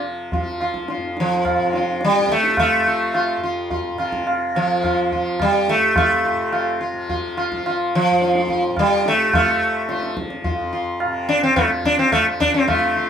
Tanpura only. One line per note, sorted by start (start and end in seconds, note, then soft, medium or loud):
0.00 0.96 F2 medium
0.00 1.57 C3 medium
0.00 0.38 F3 medium
0.38 2.18 F3 medium
0.97 3.37 F2 medium
1.58 3.95 C3 medium
2.18 2.78 F3 medium
2.78 4.55 F3 medium
3.37 5.74 F2 medium
3.95 6.33 C3 medium
4.55 5.15 F3 medium
5.15 6.93 F3 medium
5.74 8.10 F2 medium
6.33 8.69 C3 medium
6.93 7.51 F3 medium
7.51 9.29 F3 medium
8.11 10.47 F2 medium
8.70 11.05 C3 medium
9.29 9.89 F3 medium
9.89 11.64 F3 medium
10.47 13.10 F2 medium
11.05 12.69 C3 medium
11.64 12.23 F3 medium
12.23 13.10 F3 medium
12.69 13.10 C3 medium